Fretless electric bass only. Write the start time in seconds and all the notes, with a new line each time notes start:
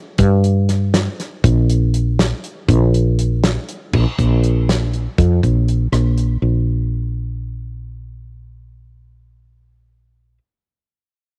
0.19 G2
1.44 A#1
2.68 A#1
3.93 A#1
4.19 A#1
5.18 F2
5.43 A#1
5.92 A#1
6.42 A#1